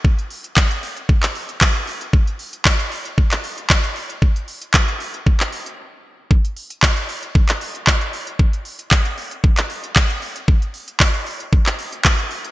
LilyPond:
\new DrumStaff \with { instrumentName = "Drums" } \drummode { \time 4/4 \tempo 4 = 115 bd16 hh16 hho16 hh16 <hc bd>16 hh16 hho16 hh16 bd16 <hc hh>16 hho16 hh16 <hc bd>16 hh16 hho16 hh16 | bd16 hh16 hho16 hh16 <hc bd>16 hh16 hho16 hh16 bd16 <hc hh>16 hho16 hh16 <hc bd>16 hh16 hho16 hh16 | bd16 hh16 hho16 hh16 <hc bd>16 hh16 hho16 hh16 bd16 <hc hh>16 hho16 hh16 r4 | bd16 hh16 hho16 hh16 <hc bd>16 hh16 hho16 hh16 bd16 <hc hh>16 hho16 hh16 <hc bd>16 hh16 hho16 hh16 |
bd16 hh16 hho16 hh16 <hc bd>16 hh16 hho16 hh16 bd16 <hc hh>16 hho16 hh16 <hc bd>16 hh16 hho16 hh16 | bd16 hh16 hho16 hh16 <hc bd>16 hh16 hho16 hh16 bd16 <hc hh>16 hho16 hh16 <hc bd>16 hh16 hho16 hh16 | }